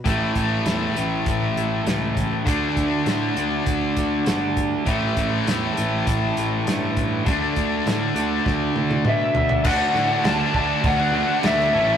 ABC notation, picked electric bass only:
X:1
M:4/4
L:1/8
Q:1/4=100
K:D
V:1 name="Picked electric bass" clef=bass
A,,, A,,, E,, A,,, A,,, A,,, C,,2 | D,, D,, A,, D,, D,, D,, G,,,2 | A,,, A,,, E,, A,,, A,,, A,,, G,,2 | D,, D,, A,, D,, D,, D,, B,,2 |
D,, A,, D,, D,, D,,2 D,, A,,, |]